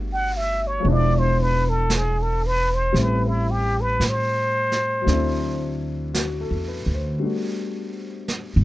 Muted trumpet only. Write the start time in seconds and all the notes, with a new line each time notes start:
0.13 F#5
0.37 E5
0.67 C#5
0.92 D5
1.19 C5
1.42 B4
1.69 A4
1.96 G#4
2.22 A4
2.46 B4
2.74 C5
3.01 B4
3.28 E4
3.51 G4
3.81 B4
4.09 C5